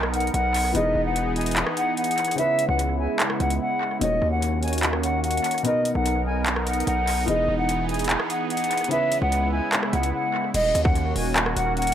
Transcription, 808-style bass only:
0.00 0.30 B1 loud
0.34 0.73 B1 loud
0.75 0.94 E1 loud
0.95 1.64 E1 loud
2.69 3.08 C#2 loud
3.40 3.60 C#2 loud
4.01 4.21 D#1 loud
4.22 5.40 D#2 loud
5.95 6.83 B1 loud
6.87 7.26 B1 loud
7.28 7.47 E1 loud
7.48 8.17 E1 loud
9.22 9.61 C#2 loud
9.93 10.13 C#2 loud
10.54 10.74 D#1 loud
10.75 11.14 D#2 loud
11.16 11.55 D#1 loud
11.56 11.94 D#1 loud

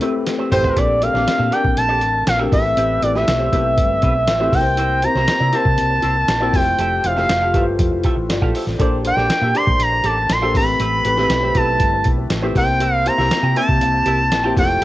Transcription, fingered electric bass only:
0.52 0.72 A1 medium
0.76 1.08 A#1 medium
1.14 1.25 A#1 medium
1.27 muted fingered electric bass stroke soft
1.39 1.50 A#2 loud
1.64 1.75 A#1 medium
1.77 2.02 A#1 medium
2.02 2.23 A1 loud
2.27 2.48 A#1 medium
2.52 2.73 A1 loud
2.77 2.98 A1 loud
3.02 3.23 A1 medium
3.28 3.49 B1 medium
3.53 3.79 B1 medium
3.78 3.98 G1 medium
4.03 4.28 B1 loud
4.28 4.49 A1 medium
4.53 5.05 C2 loud
5.15 5.26 C2 medium
5.40 5.51 C3 medium
5.65 5.76 C3 medium
5.78 5.99 C2 medium
6.03 6.24 C2 medium
6.28 6.49 A#1 medium
6.53 6.74 F1 loud
6.78 6.99 F1 medium
7.04 7.25 F1 medium
7.29 7.54 F1 medium
7.54 7.75 G1 medium
7.79 7.89 F2 loud
7.92 8.02 F1 medium
8.17 8.29 A1 medium
8.29 8.40 G1 medium
8.42 8.52 A#1 medium
8.67 8.77 A1 medium
8.79 9.11 A#1 medium
9.17 9.27 A#1 medium
9.29 muted fingered electric bass stroke soft
9.42 9.52 A#2 medium
9.67 9.77 A#1 medium
9.79 10.00 A#1 medium
10.04 10.25 A1 medium
10.29 10.55 A#1 medium
10.55 10.76 A1 loud
10.80 11.01 A1 medium
11.05 11.26 A1 medium
11.30 11.51 B1 medium
11.55 11.76 B1 medium
11.80 12.01 G1 loud
12.05 12.26 B1 medium
12.30 12.51 A1 medium
12.55 13.08 C2 loud
13.18 13.29 C2 medium
13.30 muted fingered electric bass stroke soft
13.43 13.54 C3 medium
13.69 13.79 C3 medium
13.81 14.02 C2 medium
14.06 14.31 C2 medium
14.31 14.52 A#1 loud
14.57 14.78 F1 loud
14.81 14.84 F1 medium

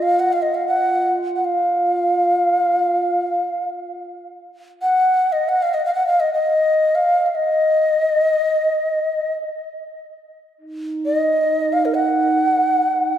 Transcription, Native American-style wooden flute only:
0.02 0.21 F5 medium
0.19 0.34 F#5 medium
0.33 0.44 F5 medium
0.42 0.56 D#5 medium
0.54 0.67 F5 medium
0.67 1.13 F#5 medium
1.36 1.46 F#5 soft
1.45 3.67 F5 medium
4.82 5.34 F#5 medium
5.32 5.50 D#5 medium
5.49 5.64 F#5 medium
5.62 5.75 F5 medium
5.74 5.85 D#5 medium
5.85 5.94 F5 medium
5.94 6.06 F#5 medium
6.07 6.21 F5 medium
6.20 6.33 D#5 medium
6.34 6.97 D#5 medium
6.95 7.26 F5 medium
7.26 7.37 F5 soft
7.35 9.34 D#5 medium
11.06 11.74 D#5 medium
11.73 11.87 F5 medium
11.85 11.96 A#4 medium
11.95 13.18 F#5 medium

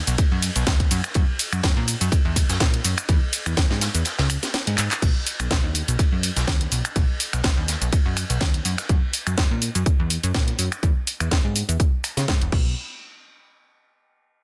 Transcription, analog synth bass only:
0.07 0.16 B1 medium
0.32 0.50 F#2 medium
0.56 0.64 B1 loud
0.91 1.01 F#2 medium
1.15 1.26 F#2 loud
1.53 1.61 F#2 medium
1.77 1.95 A#2 medium
2.01 2.10 F#2 medium
2.25 2.44 E2 medium
2.49 2.58 F#2 loud
2.60 2.80 A#2 loud
2.85 2.95 F#2 medium
3.09 3.19 E2 loud
3.46 3.55 E2 medium
3.70 3.89 G#2 medium
3.95 4.03 E2 medium
4.19 4.37 C#2 medium
4.67 4.76 G#2 loud
4.78 4.89 G#2 medium
5.02 5.13 B1 loud
5.40 5.48 B1 medium
5.51 5.61 B1 medium
5.64 5.82 D#2 medium
5.88 5.97 B1 medium
6.12 6.31 F#2 medium
6.36 6.45 B1 loud
6.72 6.82 B1 medium
6.96 7.06 B1 loud
7.33 7.42 B1 medium
7.57 7.76 D#2 medium
7.81 7.90 B1 medium
8.06 8.24 F#2 medium
8.30 8.39 B1 loud
8.41 8.60 D#2 loud
8.65 8.76 F#2 medium
8.89 9.00 F#2 loud
9.27 9.35 F#2 medium
9.51 9.70 A#2 medium
9.75 9.84 F#2 medium
9.99 10.18 E2 medium
10.24 10.32 F#2 loud
10.59 10.69 F#2 medium
10.83 10.93 E2 loud
11.20 11.29 E2 medium
11.31 11.42 E2 medium
11.44 11.63 G#2 medium
11.69 11.77 E2 medium
12.17 12.26 C#3 loud
12.28 12.39 G#2 medium
12.41 12.50 E1 medium
12.52 12.75 B1 loud

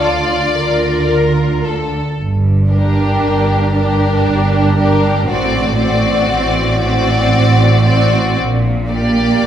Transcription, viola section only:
0.00 1.61 F4 soft
2.71 3.73 D4 soft
3.74 4.75 D4 soft
4.78 5.28 D4 soft
5.29 5.78 C4 soft
5.80 6.80 C4 soft
6.82 7.84 C4 soft
7.86 8.37 C4 soft
8.90 9.47 A#3 soft

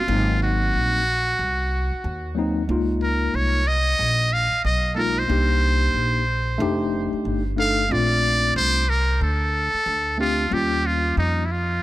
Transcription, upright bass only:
0.08 0.70 G#1 loud
0.74 1.36 A#1 medium
1.39 1.89 C2 medium
1.92 muted upright bass stroke soft
2.04 2.66 D#2 medium
2.69 3.31 C#2 loud
3.34 3.96 C2 medium
3.99 4.50 A#1 medium
4.52 muted upright bass stroke soft
4.65 5.27 B1 medium
5.30 5.92 C2 loud
5.94 6.57 A#1 medium
6.60 7.11 F1 loud
7.13 muted upright bass stroke soft
7.25 7.87 G1 medium
7.91 8.53 A#1 loud
8.56 9.18 C2 medium
9.21 9.72 D2 medium
9.74 muted upright bass stroke soft
9.86 10.48 D2 medium
10.52 11.14 D#2 loud
11.17 11.79 F2 medium

